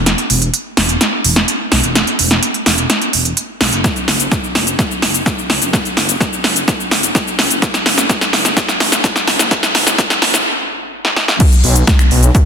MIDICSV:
0, 0, Header, 1, 3, 480
1, 0, Start_track
1, 0, Tempo, 472441
1, 65, Time_signature, 4, 2, 24, 8
1, 12651, End_track
2, 0, Start_track
2, 0, Title_t, "Detuned saw bass"
2, 0, Program_c, 0, 39
2, 0, Note_on_c, 0, 28, 78
2, 138, Note_off_c, 0, 28, 0
2, 303, Note_on_c, 0, 28, 97
2, 497, Note_off_c, 0, 28, 0
2, 785, Note_on_c, 0, 28, 83
2, 978, Note_off_c, 0, 28, 0
2, 1263, Note_on_c, 0, 28, 82
2, 1457, Note_off_c, 0, 28, 0
2, 1744, Note_on_c, 0, 35, 98
2, 1841, Note_off_c, 0, 35, 0
2, 1864, Note_on_c, 0, 28, 83
2, 2058, Note_off_c, 0, 28, 0
2, 2225, Note_on_c, 0, 28, 98
2, 2418, Note_off_c, 0, 28, 0
2, 2704, Note_on_c, 0, 28, 82
2, 2897, Note_off_c, 0, 28, 0
2, 3185, Note_on_c, 0, 28, 80
2, 3378, Note_off_c, 0, 28, 0
2, 3665, Note_on_c, 0, 35, 94
2, 3761, Note_off_c, 0, 35, 0
2, 3784, Note_on_c, 0, 30, 83
2, 3978, Note_off_c, 0, 30, 0
2, 4143, Note_on_c, 0, 30, 99
2, 4337, Note_off_c, 0, 30, 0
2, 4624, Note_on_c, 0, 30, 84
2, 4817, Note_off_c, 0, 30, 0
2, 5103, Note_on_c, 0, 30, 79
2, 5297, Note_off_c, 0, 30, 0
2, 5584, Note_on_c, 0, 37, 98
2, 5681, Note_off_c, 0, 37, 0
2, 5705, Note_on_c, 0, 30, 82
2, 5898, Note_off_c, 0, 30, 0
2, 6065, Note_on_c, 0, 30, 100
2, 6258, Note_off_c, 0, 30, 0
2, 6544, Note_on_c, 0, 30, 83
2, 6738, Note_off_c, 0, 30, 0
2, 7025, Note_on_c, 0, 30, 82
2, 7218, Note_off_c, 0, 30, 0
2, 7506, Note_on_c, 0, 37, 97
2, 7602, Note_off_c, 0, 37, 0
2, 7626, Note_on_c, 0, 30, 83
2, 7818, Note_off_c, 0, 30, 0
2, 7986, Note_on_c, 0, 30, 96
2, 8178, Note_off_c, 0, 30, 0
2, 8464, Note_on_c, 0, 30, 85
2, 8658, Note_off_c, 0, 30, 0
2, 8943, Note_on_c, 0, 30, 82
2, 9137, Note_off_c, 0, 30, 0
2, 9423, Note_on_c, 0, 37, 94
2, 9520, Note_off_c, 0, 37, 0
2, 9544, Note_on_c, 0, 30, 80
2, 9737, Note_off_c, 0, 30, 0
2, 9904, Note_on_c, 0, 30, 100
2, 10097, Note_off_c, 0, 30, 0
2, 10382, Note_on_c, 0, 30, 83
2, 10576, Note_off_c, 0, 30, 0
2, 11825, Note_on_c, 0, 35, 103
2, 12018, Note_off_c, 0, 35, 0
2, 12304, Note_on_c, 0, 35, 86
2, 12498, Note_off_c, 0, 35, 0
2, 12651, End_track
3, 0, Start_track
3, 0, Title_t, "Drums"
3, 64, Note_on_c, 9, 38, 58
3, 64, Note_on_c, 9, 42, 74
3, 166, Note_off_c, 9, 38, 0
3, 166, Note_off_c, 9, 42, 0
3, 184, Note_on_c, 9, 42, 35
3, 286, Note_off_c, 9, 42, 0
3, 304, Note_on_c, 9, 46, 112
3, 406, Note_off_c, 9, 46, 0
3, 424, Note_on_c, 9, 42, 52
3, 526, Note_off_c, 9, 42, 0
3, 544, Note_on_c, 9, 42, 74
3, 646, Note_off_c, 9, 42, 0
3, 784, Note_on_c, 9, 38, 60
3, 784, Note_on_c, 9, 46, 95
3, 885, Note_off_c, 9, 38, 0
3, 885, Note_off_c, 9, 46, 0
3, 904, Note_on_c, 9, 42, 50
3, 1006, Note_off_c, 9, 42, 0
3, 1024, Note_on_c, 9, 38, 58
3, 1024, Note_on_c, 9, 42, 72
3, 1126, Note_off_c, 9, 38, 0
3, 1126, Note_off_c, 9, 42, 0
3, 1265, Note_on_c, 9, 46, 113
3, 1366, Note_off_c, 9, 46, 0
3, 1384, Note_on_c, 9, 38, 58
3, 1384, Note_on_c, 9, 42, 50
3, 1485, Note_off_c, 9, 38, 0
3, 1485, Note_off_c, 9, 42, 0
3, 1504, Note_on_c, 9, 42, 74
3, 1606, Note_off_c, 9, 42, 0
3, 1744, Note_on_c, 9, 38, 67
3, 1744, Note_on_c, 9, 46, 95
3, 1846, Note_off_c, 9, 38, 0
3, 1846, Note_off_c, 9, 46, 0
3, 1864, Note_on_c, 9, 42, 50
3, 1966, Note_off_c, 9, 42, 0
3, 1986, Note_on_c, 9, 38, 64
3, 1986, Note_on_c, 9, 42, 72
3, 2087, Note_off_c, 9, 38, 0
3, 2087, Note_off_c, 9, 42, 0
3, 2105, Note_on_c, 9, 42, 34
3, 2207, Note_off_c, 9, 42, 0
3, 2224, Note_on_c, 9, 46, 109
3, 2325, Note_off_c, 9, 46, 0
3, 2345, Note_on_c, 9, 38, 63
3, 2345, Note_on_c, 9, 42, 53
3, 2447, Note_off_c, 9, 38, 0
3, 2447, Note_off_c, 9, 42, 0
3, 2464, Note_on_c, 9, 42, 73
3, 2566, Note_off_c, 9, 42, 0
3, 2584, Note_on_c, 9, 42, 36
3, 2685, Note_off_c, 9, 42, 0
3, 2704, Note_on_c, 9, 38, 67
3, 2704, Note_on_c, 9, 46, 95
3, 2805, Note_off_c, 9, 38, 0
3, 2805, Note_off_c, 9, 46, 0
3, 2823, Note_on_c, 9, 42, 50
3, 2925, Note_off_c, 9, 42, 0
3, 2943, Note_on_c, 9, 38, 68
3, 2943, Note_on_c, 9, 42, 74
3, 3044, Note_off_c, 9, 38, 0
3, 3044, Note_off_c, 9, 42, 0
3, 3063, Note_on_c, 9, 42, 35
3, 3165, Note_off_c, 9, 42, 0
3, 3183, Note_on_c, 9, 46, 110
3, 3285, Note_off_c, 9, 46, 0
3, 3304, Note_on_c, 9, 42, 50
3, 3406, Note_off_c, 9, 42, 0
3, 3424, Note_on_c, 9, 42, 74
3, 3525, Note_off_c, 9, 42, 0
3, 3664, Note_on_c, 9, 38, 73
3, 3664, Note_on_c, 9, 46, 93
3, 3766, Note_off_c, 9, 38, 0
3, 3766, Note_off_c, 9, 46, 0
3, 3785, Note_on_c, 9, 42, 50
3, 3886, Note_off_c, 9, 42, 0
3, 3904, Note_on_c, 9, 36, 119
3, 3905, Note_on_c, 9, 38, 74
3, 3905, Note_on_c, 9, 42, 72
3, 3911, Note_on_c, 9, 82, 56
3, 4006, Note_off_c, 9, 36, 0
3, 4006, Note_off_c, 9, 38, 0
3, 4006, Note_off_c, 9, 42, 0
3, 4013, Note_off_c, 9, 82, 0
3, 4024, Note_on_c, 9, 42, 36
3, 4030, Note_on_c, 9, 82, 35
3, 4125, Note_off_c, 9, 42, 0
3, 4132, Note_off_c, 9, 82, 0
3, 4144, Note_on_c, 9, 38, 77
3, 4144, Note_on_c, 9, 46, 108
3, 4246, Note_off_c, 9, 38, 0
3, 4246, Note_off_c, 9, 46, 0
3, 4264, Note_on_c, 9, 42, 54
3, 4270, Note_on_c, 9, 82, 71
3, 4366, Note_off_c, 9, 42, 0
3, 4372, Note_off_c, 9, 82, 0
3, 4384, Note_on_c, 9, 36, 118
3, 4384, Note_on_c, 9, 38, 76
3, 4384, Note_on_c, 9, 42, 73
3, 4391, Note_on_c, 9, 82, 57
3, 4486, Note_off_c, 9, 36, 0
3, 4486, Note_off_c, 9, 38, 0
3, 4486, Note_off_c, 9, 42, 0
3, 4492, Note_off_c, 9, 82, 0
3, 4511, Note_on_c, 9, 82, 33
3, 4612, Note_off_c, 9, 82, 0
3, 4624, Note_on_c, 9, 38, 76
3, 4624, Note_on_c, 9, 46, 91
3, 4726, Note_off_c, 9, 38, 0
3, 4726, Note_off_c, 9, 46, 0
3, 4744, Note_on_c, 9, 42, 51
3, 4751, Note_on_c, 9, 82, 68
3, 4846, Note_off_c, 9, 42, 0
3, 4852, Note_off_c, 9, 82, 0
3, 4865, Note_on_c, 9, 36, 122
3, 4865, Note_on_c, 9, 38, 77
3, 4865, Note_on_c, 9, 42, 73
3, 4872, Note_on_c, 9, 82, 55
3, 4966, Note_off_c, 9, 36, 0
3, 4967, Note_off_c, 9, 38, 0
3, 4967, Note_off_c, 9, 42, 0
3, 4973, Note_off_c, 9, 82, 0
3, 4992, Note_on_c, 9, 82, 34
3, 5093, Note_off_c, 9, 82, 0
3, 5104, Note_on_c, 9, 38, 81
3, 5104, Note_on_c, 9, 46, 109
3, 5205, Note_off_c, 9, 38, 0
3, 5205, Note_off_c, 9, 46, 0
3, 5225, Note_on_c, 9, 42, 51
3, 5231, Note_on_c, 9, 82, 68
3, 5326, Note_off_c, 9, 42, 0
3, 5333, Note_off_c, 9, 82, 0
3, 5345, Note_on_c, 9, 36, 119
3, 5345, Note_on_c, 9, 38, 80
3, 5345, Note_on_c, 9, 42, 75
3, 5351, Note_on_c, 9, 82, 57
3, 5446, Note_off_c, 9, 36, 0
3, 5446, Note_off_c, 9, 38, 0
3, 5446, Note_off_c, 9, 42, 0
3, 5453, Note_off_c, 9, 82, 0
3, 5472, Note_on_c, 9, 82, 34
3, 5574, Note_off_c, 9, 82, 0
3, 5585, Note_on_c, 9, 38, 82
3, 5585, Note_on_c, 9, 46, 94
3, 5687, Note_off_c, 9, 38, 0
3, 5687, Note_off_c, 9, 46, 0
3, 5706, Note_on_c, 9, 42, 50
3, 5712, Note_on_c, 9, 82, 69
3, 5807, Note_off_c, 9, 42, 0
3, 5814, Note_off_c, 9, 82, 0
3, 5825, Note_on_c, 9, 36, 116
3, 5826, Note_on_c, 9, 38, 81
3, 5826, Note_on_c, 9, 42, 76
3, 5832, Note_on_c, 9, 82, 58
3, 5927, Note_off_c, 9, 36, 0
3, 5927, Note_off_c, 9, 38, 0
3, 5927, Note_off_c, 9, 42, 0
3, 5934, Note_off_c, 9, 82, 0
3, 5945, Note_on_c, 9, 42, 38
3, 5952, Note_on_c, 9, 82, 36
3, 6047, Note_off_c, 9, 42, 0
3, 6053, Note_off_c, 9, 82, 0
3, 6065, Note_on_c, 9, 38, 82
3, 6065, Note_on_c, 9, 46, 104
3, 6167, Note_off_c, 9, 38, 0
3, 6167, Note_off_c, 9, 46, 0
3, 6185, Note_on_c, 9, 42, 56
3, 6192, Note_on_c, 9, 82, 74
3, 6287, Note_off_c, 9, 42, 0
3, 6293, Note_off_c, 9, 82, 0
3, 6305, Note_on_c, 9, 36, 120
3, 6305, Note_on_c, 9, 38, 84
3, 6305, Note_on_c, 9, 42, 78
3, 6312, Note_on_c, 9, 82, 57
3, 6406, Note_off_c, 9, 36, 0
3, 6407, Note_off_c, 9, 38, 0
3, 6407, Note_off_c, 9, 42, 0
3, 6414, Note_off_c, 9, 82, 0
3, 6431, Note_on_c, 9, 82, 35
3, 6532, Note_off_c, 9, 82, 0
3, 6544, Note_on_c, 9, 38, 84
3, 6544, Note_on_c, 9, 46, 88
3, 6645, Note_off_c, 9, 38, 0
3, 6645, Note_off_c, 9, 46, 0
3, 6664, Note_on_c, 9, 42, 53
3, 6671, Note_on_c, 9, 82, 69
3, 6766, Note_off_c, 9, 42, 0
3, 6772, Note_off_c, 9, 82, 0
3, 6784, Note_on_c, 9, 38, 86
3, 6784, Note_on_c, 9, 42, 79
3, 6785, Note_on_c, 9, 36, 120
3, 6791, Note_on_c, 9, 82, 57
3, 6886, Note_off_c, 9, 36, 0
3, 6886, Note_off_c, 9, 38, 0
3, 6886, Note_off_c, 9, 42, 0
3, 6892, Note_off_c, 9, 82, 0
3, 6911, Note_on_c, 9, 82, 35
3, 7013, Note_off_c, 9, 82, 0
3, 7024, Note_on_c, 9, 38, 91
3, 7024, Note_on_c, 9, 46, 103
3, 7126, Note_off_c, 9, 38, 0
3, 7126, Note_off_c, 9, 46, 0
3, 7144, Note_on_c, 9, 42, 54
3, 7150, Note_on_c, 9, 82, 72
3, 7246, Note_off_c, 9, 42, 0
3, 7252, Note_off_c, 9, 82, 0
3, 7264, Note_on_c, 9, 38, 92
3, 7264, Note_on_c, 9, 42, 80
3, 7265, Note_on_c, 9, 36, 119
3, 7270, Note_on_c, 9, 82, 60
3, 7366, Note_off_c, 9, 36, 0
3, 7366, Note_off_c, 9, 38, 0
3, 7366, Note_off_c, 9, 42, 0
3, 7372, Note_off_c, 9, 82, 0
3, 7392, Note_on_c, 9, 82, 36
3, 7493, Note_off_c, 9, 82, 0
3, 7505, Note_on_c, 9, 38, 93
3, 7505, Note_on_c, 9, 46, 92
3, 7607, Note_off_c, 9, 38, 0
3, 7607, Note_off_c, 9, 46, 0
3, 7625, Note_on_c, 9, 42, 54
3, 7631, Note_on_c, 9, 82, 69
3, 7727, Note_off_c, 9, 42, 0
3, 7733, Note_off_c, 9, 82, 0
3, 7744, Note_on_c, 9, 36, 118
3, 7744, Note_on_c, 9, 38, 91
3, 7744, Note_on_c, 9, 42, 80
3, 7750, Note_on_c, 9, 82, 59
3, 7845, Note_off_c, 9, 38, 0
3, 7845, Note_off_c, 9, 42, 0
3, 7846, Note_off_c, 9, 36, 0
3, 7852, Note_off_c, 9, 82, 0
3, 7864, Note_on_c, 9, 38, 84
3, 7864, Note_on_c, 9, 42, 39
3, 7871, Note_on_c, 9, 82, 37
3, 7966, Note_off_c, 9, 38, 0
3, 7966, Note_off_c, 9, 42, 0
3, 7972, Note_off_c, 9, 82, 0
3, 7984, Note_on_c, 9, 38, 92
3, 7984, Note_on_c, 9, 46, 104
3, 8086, Note_off_c, 9, 38, 0
3, 8086, Note_off_c, 9, 46, 0
3, 8104, Note_on_c, 9, 38, 89
3, 8104, Note_on_c, 9, 42, 57
3, 8111, Note_on_c, 9, 82, 75
3, 8206, Note_off_c, 9, 38, 0
3, 8206, Note_off_c, 9, 42, 0
3, 8212, Note_off_c, 9, 82, 0
3, 8224, Note_on_c, 9, 36, 116
3, 8224, Note_on_c, 9, 38, 94
3, 8224, Note_on_c, 9, 42, 80
3, 8231, Note_on_c, 9, 82, 59
3, 8326, Note_off_c, 9, 36, 0
3, 8326, Note_off_c, 9, 38, 0
3, 8326, Note_off_c, 9, 42, 0
3, 8332, Note_off_c, 9, 82, 0
3, 8345, Note_on_c, 9, 38, 85
3, 8351, Note_on_c, 9, 82, 36
3, 8446, Note_off_c, 9, 38, 0
3, 8453, Note_off_c, 9, 82, 0
3, 8464, Note_on_c, 9, 38, 93
3, 8464, Note_on_c, 9, 46, 89
3, 8566, Note_off_c, 9, 38, 0
3, 8566, Note_off_c, 9, 46, 0
3, 8584, Note_on_c, 9, 38, 85
3, 8584, Note_on_c, 9, 42, 55
3, 8591, Note_on_c, 9, 82, 72
3, 8686, Note_off_c, 9, 38, 0
3, 8686, Note_off_c, 9, 42, 0
3, 8693, Note_off_c, 9, 82, 0
3, 8704, Note_on_c, 9, 36, 118
3, 8704, Note_on_c, 9, 38, 96
3, 8704, Note_on_c, 9, 42, 80
3, 8710, Note_on_c, 9, 82, 58
3, 8805, Note_off_c, 9, 36, 0
3, 8805, Note_off_c, 9, 38, 0
3, 8805, Note_off_c, 9, 42, 0
3, 8812, Note_off_c, 9, 82, 0
3, 8824, Note_on_c, 9, 38, 89
3, 8830, Note_on_c, 9, 82, 37
3, 8925, Note_off_c, 9, 38, 0
3, 8932, Note_off_c, 9, 82, 0
3, 8944, Note_on_c, 9, 38, 101
3, 8944, Note_on_c, 9, 46, 101
3, 9046, Note_off_c, 9, 38, 0
3, 9046, Note_off_c, 9, 46, 0
3, 9064, Note_on_c, 9, 38, 89
3, 9064, Note_on_c, 9, 42, 54
3, 9070, Note_on_c, 9, 82, 73
3, 9165, Note_off_c, 9, 38, 0
3, 9165, Note_off_c, 9, 42, 0
3, 9172, Note_off_c, 9, 82, 0
3, 9184, Note_on_c, 9, 36, 118
3, 9184, Note_on_c, 9, 38, 102
3, 9184, Note_on_c, 9, 42, 80
3, 9190, Note_on_c, 9, 82, 60
3, 9285, Note_off_c, 9, 36, 0
3, 9285, Note_off_c, 9, 38, 0
3, 9285, Note_off_c, 9, 42, 0
3, 9292, Note_off_c, 9, 82, 0
3, 9303, Note_on_c, 9, 38, 90
3, 9310, Note_on_c, 9, 82, 37
3, 9405, Note_off_c, 9, 38, 0
3, 9411, Note_off_c, 9, 82, 0
3, 9424, Note_on_c, 9, 38, 99
3, 9424, Note_on_c, 9, 46, 88
3, 9525, Note_off_c, 9, 38, 0
3, 9525, Note_off_c, 9, 46, 0
3, 9544, Note_on_c, 9, 38, 93
3, 9544, Note_on_c, 9, 42, 54
3, 9551, Note_on_c, 9, 82, 73
3, 9646, Note_off_c, 9, 38, 0
3, 9646, Note_off_c, 9, 42, 0
3, 9652, Note_off_c, 9, 82, 0
3, 9663, Note_on_c, 9, 38, 98
3, 9663, Note_on_c, 9, 42, 81
3, 9664, Note_on_c, 9, 36, 115
3, 9670, Note_on_c, 9, 82, 57
3, 9765, Note_off_c, 9, 36, 0
3, 9765, Note_off_c, 9, 38, 0
3, 9765, Note_off_c, 9, 42, 0
3, 9772, Note_off_c, 9, 82, 0
3, 9784, Note_on_c, 9, 38, 94
3, 9784, Note_on_c, 9, 42, 40
3, 9790, Note_on_c, 9, 82, 36
3, 9886, Note_off_c, 9, 38, 0
3, 9886, Note_off_c, 9, 42, 0
3, 9892, Note_off_c, 9, 82, 0
3, 9904, Note_on_c, 9, 38, 106
3, 9904, Note_on_c, 9, 46, 106
3, 10006, Note_off_c, 9, 38, 0
3, 10006, Note_off_c, 9, 46, 0
3, 10025, Note_on_c, 9, 38, 93
3, 10025, Note_on_c, 9, 42, 60
3, 10031, Note_on_c, 9, 82, 74
3, 10126, Note_off_c, 9, 38, 0
3, 10126, Note_off_c, 9, 42, 0
3, 10133, Note_off_c, 9, 82, 0
3, 10144, Note_on_c, 9, 36, 119
3, 10145, Note_on_c, 9, 38, 103
3, 10145, Note_on_c, 9, 42, 85
3, 10151, Note_on_c, 9, 82, 58
3, 10246, Note_off_c, 9, 36, 0
3, 10246, Note_off_c, 9, 38, 0
3, 10246, Note_off_c, 9, 42, 0
3, 10253, Note_off_c, 9, 82, 0
3, 10264, Note_on_c, 9, 38, 93
3, 10264, Note_on_c, 9, 42, 39
3, 10271, Note_on_c, 9, 82, 35
3, 10366, Note_off_c, 9, 38, 0
3, 10366, Note_off_c, 9, 42, 0
3, 10373, Note_off_c, 9, 82, 0
3, 10384, Note_on_c, 9, 38, 106
3, 10384, Note_on_c, 9, 46, 91
3, 10485, Note_off_c, 9, 38, 0
3, 10485, Note_off_c, 9, 46, 0
3, 10504, Note_on_c, 9, 38, 93
3, 10504, Note_on_c, 9, 42, 55
3, 10511, Note_on_c, 9, 82, 72
3, 10606, Note_off_c, 9, 38, 0
3, 10606, Note_off_c, 9, 42, 0
3, 10612, Note_off_c, 9, 82, 0
3, 11224, Note_on_c, 9, 38, 53
3, 11325, Note_off_c, 9, 38, 0
3, 11344, Note_on_c, 9, 38, 79
3, 11445, Note_off_c, 9, 38, 0
3, 11463, Note_on_c, 9, 38, 84
3, 11565, Note_off_c, 9, 38, 0
3, 11583, Note_on_c, 9, 42, 84
3, 11583, Note_on_c, 9, 49, 108
3, 11584, Note_on_c, 9, 36, 116
3, 11589, Note_on_c, 9, 82, 56
3, 11684, Note_off_c, 9, 42, 0
3, 11684, Note_off_c, 9, 49, 0
3, 11686, Note_off_c, 9, 36, 0
3, 11691, Note_off_c, 9, 82, 0
3, 11704, Note_on_c, 9, 42, 41
3, 11711, Note_on_c, 9, 82, 34
3, 11806, Note_off_c, 9, 42, 0
3, 11812, Note_off_c, 9, 82, 0
3, 11823, Note_on_c, 9, 46, 107
3, 11925, Note_off_c, 9, 46, 0
3, 11944, Note_on_c, 9, 42, 58
3, 11950, Note_on_c, 9, 82, 70
3, 12045, Note_off_c, 9, 42, 0
3, 12052, Note_off_c, 9, 82, 0
3, 12064, Note_on_c, 9, 36, 126
3, 12064, Note_on_c, 9, 38, 123
3, 12064, Note_on_c, 9, 42, 85
3, 12070, Note_on_c, 9, 82, 56
3, 12165, Note_off_c, 9, 38, 0
3, 12165, Note_off_c, 9, 42, 0
3, 12166, Note_off_c, 9, 36, 0
3, 12172, Note_off_c, 9, 82, 0
3, 12184, Note_on_c, 9, 26, 80
3, 12190, Note_on_c, 9, 82, 34
3, 12285, Note_off_c, 9, 26, 0
3, 12292, Note_off_c, 9, 82, 0
3, 12304, Note_on_c, 9, 46, 92
3, 12405, Note_off_c, 9, 46, 0
3, 12423, Note_on_c, 9, 42, 56
3, 12430, Note_on_c, 9, 82, 67
3, 12525, Note_off_c, 9, 42, 0
3, 12531, Note_off_c, 9, 82, 0
3, 12544, Note_on_c, 9, 42, 82
3, 12545, Note_on_c, 9, 36, 121
3, 12550, Note_on_c, 9, 82, 55
3, 12646, Note_off_c, 9, 36, 0
3, 12646, Note_off_c, 9, 42, 0
3, 12651, Note_off_c, 9, 82, 0
3, 12651, End_track
0, 0, End_of_file